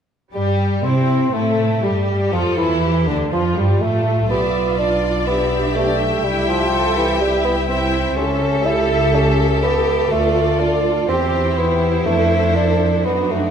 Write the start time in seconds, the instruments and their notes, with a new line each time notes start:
0.34 double bass section G2, violin section G3, viola section G3, bassoon G3, cello section G4
0.83 double bass section C3, violin section C4, bassoon C4, viola section C4, cello section E4
1.32 double bass section A2, violin section A3, bassoon A3, viola section A3, cello section E4
1.83 double bass section G2, violin section G3, bassoon G3, viola section G3, cello section G4
2.32 double bass section F2, bassoon F3, viola section F3, violin section F4, cello section A4
2.57 double bass section E2, bassoon E3, viola section E3, violin section E4
2.82 cello section G4
3.07 double bass section D2, bassoon D3, viola section D3, violin section D4
3.32 double bass section F2, viola section F3, bassoon F3, violin section F4, cello section F4
3.56 double bass section G2, violin section G3, viola section G3, bassoon G3
3.81 double bass section A2, bassoon A3, viola section A3, violin section A3
4.30 double bass section B1, bassoon B3, viola section G4, violin section D5 E5
4.55 viola section F4
4.78 bassoon D4, violin section D5
5.26 bassoon B3, cello section D4, viola section G4, violin section E5
5.75 bassoon A3, violin section D5 G5
5.99 violin section E5
6.24 double bass section C2, bassoon G3, cello section E4, viola section G4
6.48 bassoon F3
6.72 cello section A4, viola section A4
6.96 bassoon E3, viola section G4
7.20 bassoon G3, viola section E4, cello section G4
7.44 bassoon B3
7.68 bassoon C4, cello section E4, viola section E4, violin section E5 G5
8.16 double bass section C#2, bassoon C#4, viola section G4, cello section A4, violin section A4 E5
8.66 bassoon E4
9.15 bassoon C#4
9.62 bassoon B3, cello section G4
10.10 double bass section D2, bassoon A3, cello section F4, viola section F4, violin section D5
10.60 bassoon D4, cello section F4
11.08 double bass section E2, bassoon C4, viola section E4, cello section G4, violin section G4 C5
11.58 bassoon B3, cello section E4
12.06 double bass section F2, bassoon A3, viola section D4, violin section A4
12.56 bassoon D4
13.05 double bass section F#2, bassoon B3, cello section D4, viola section D#4, violin section F#4
13.31 bassoon A3